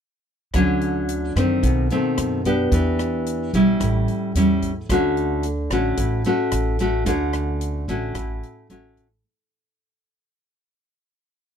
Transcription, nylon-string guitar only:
0.55 1.61 D3 medium
0.55 1.32 F#3 medium
0.55 1.32 A3 soft
0.55 1.32 C#4 medium
1.36 1.86 D#3 medium
1.36 1.86 A3 soft
1.36 1.87 C4 medium
1.64 2.69 B2 soft
1.91 2.41 D#3 soft
1.91 2.41 A3 medium
1.91 2.41 C4 medium
2.46 3.50 B3 soft
2.46 3.49 D4 soft
2.46 3.50 G4 medium
2.73 3.54 E3 medium
3.55 4.31 G3 medium
3.55 4.31 C#4 medium
3.55 4.31 E4 medium
3.82 4.87 A2 medium
4.36 4.71 G3 soft
4.36 4.71 C#4 soft
4.36 4.71 E4 medium
4.91 5.96 D3 medium
4.91 5.44 A3 medium
4.91 5.44 C#4 medium
4.91 5.44 F#4 medium
5.72 6.21 A3 medium
5.72 6.21 C#4 medium
5.72 6.22 F#4 medium
5.98 7.04 A2 soft
6.26 6.76 A3 medium
6.26 6.76 C#4 medium
6.26 6.76 F#4 medium
6.80 7.03 A3 soft
6.80 7.03 C#4 medium
6.80 7.03 F#4 medium
7.06 8.13 D3 medium
7.06 7.84 A3 soft
7.06 7.84 C#4 medium
7.06 7.84 F#4 medium
7.89 8.66 A3 medium
7.89 8.67 C#4 medium
7.89 8.67 F#4 medium
8.15 9.22 A2 soft
8.70 9.06 A3 soft
8.70 9.06 C#4 soft
8.70 9.06 F#4 medium

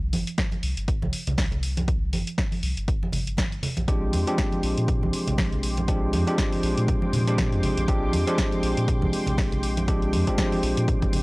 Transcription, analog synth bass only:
0.00 0.15 C2 loud
0.13 0.24 G1 loud
0.63 0.74 C2 loud
0.77 1.04 G1 medium
1.02 1.10 C2 medium
1.27 2.15 C2 medium
2.13 2.24 G1 loud
2.63 2.74 C2 loud
2.77 2.95 G1 medium
3.13 3.24 G1 loud
3.27 3.59 G1 loud
3.77 3.85 A#1 medium
3.88 4.15 A#1 loud
4.13 4.24 F2 loud
4.63 4.74 A#1 loud
4.77 5.04 A#2 medium
5.02 5.10 A#1 loud
5.27 6.15 A#1 medium
6.13 6.24 F2 loud
6.63 6.74 A#1 loud
6.77 6.95 A#2 medium
7.13 7.54 A#2 medium
7.52 7.60 F2 medium
7.63 7.74 G#1 medium
7.77 7.85 A#1 medium
7.88 8.15 A#1 loud
8.13 8.24 F2 loud
8.63 8.74 A#1 loud
8.77 9.04 A#2 medium
9.02 9.10 A#1 loud
9.27 10.15 A#1 medium
10.13 10.24 F2 loud
10.63 10.74 A#1 loud
10.77 10.95 A#2 medium
11.02 11.23 G#1 medium

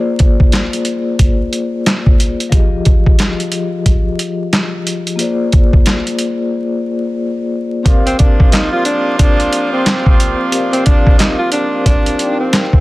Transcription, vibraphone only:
0.00 2.47 A#3 medium
0.00 2.47 F4 medium
0.00 2.48 G#4 medium
0.00 2.49 C5 medium
0.00 2.49 D5 medium
2.49 5.13 F3 medium
2.49 5.14 F4 medium
2.49 5.15 G4 medium
2.53 5.15 G#4 medium
2.53 5.16 D#5 medium
5.16 7.80 A#3 medium
5.16 7.81 F4 medium
5.16 7.81 G#4 medium
5.20 7.82 C5 medium
5.20 7.83 D5 medium
7.83 10.47 C4 medium
7.83 10.47 G4 medium
7.83 10.48 A#4 medium
7.83 10.48 D5 medium
7.88 10.49 C5 medium
7.88 10.50 F5 medium
10.50 12.14 C4 medium
10.50 12.15 G4 medium
10.50 12.15 A#4 medium
10.50 12.16 D5 medium
10.54 12.16 C5 medium
10.54 12.17 F5 medium
12.18 12.80 C4 medium
12.18 12.80 D#4 soft
12.18 12.80 G4 soft
12.18 12.80 A#4 soft
12.18 12.80 D5 soft
12.18 12.80 G5 medium

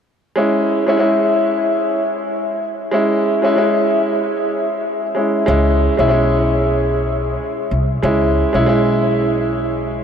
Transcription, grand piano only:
0.36 0.83 G#3 medium
0.36 0.84 C#4 medium
0.36 0.84 E4 medium
0.87 0.96 G#3 medium
0.87 0.97 C#4 medium
0.87 0.98 E4 loud
0.97 2.61 G#3 medium
0.97 2.62 C#4 medium
0.97 2.62 E4 loud
2.91 3.38 G#3 medium
2.91 3.39 C#4 medium
2.91 3.40 E4 loud
3.42 3.54 G#3 medium
3.42 3.55 C#4 medium
3.42 3.56 E4 loud
3.55 5.05 G#3 medium
3.55 5.06 C#4 medium
3.55 5.06 E4 loud
5.15 5.45 G#3 medium
5.15 5.46 C#4 medium
5.15 5.46 E4 medium
5.46 5.93 G#3 medium
5.46 5.94 C#4 medium
5.46 5.95 E4 medium
5.97 6.07 G#3 medium
5.97 6.08 C#4 medium
5.97 6.09 E4 loud
6.08 7.72 G#3 medium
6.08 7.73 C#4 medium
6.08 7.73 E4 loud
8.02 8.49 G#3 medium
8.02 8.50 C#4 medium
8.02 8.51 E4 medium
8.53 8.65 G#3 medium
8.53 8.66 C#4 medium
8.53 8.67 E4 loud
8.66 10.04 G#3 medium
8.66 10.04 C#4 medium
8.66 10.04 E4 loud

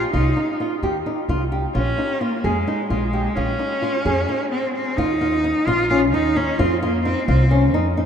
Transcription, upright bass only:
0.14 0.32 C2 medium
0.83 1.01 D#2 medium
1.29 1.65 C2 medium
1.75 1.93 A#1 medium
2.44 2.62 F2 medium
2.90 3.26 A#1 medium
3.36 3.54 A#1 medium
4.05 4.23 F2 medium
4.98 5.52 D#2 medium
5.67 6.13 A#1 medium
6.13 6.49 D#2 medium
6.59 7.13 F2 medium
7.28 7.74 C2 medium
7.74 8.05 F2 medium

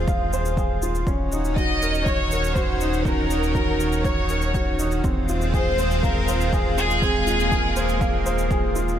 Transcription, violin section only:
1.57 2.03 D#5 loud
2.05 2.56 C#5 loud
2.56 3.06 C5 medium
3.06 4.05 A#4 medium
4.06 4.80 C#5 medium
5.53 6.00 C5 loud
6.03 6.53 A#4 medium
6.78 8.48 G#4 loud

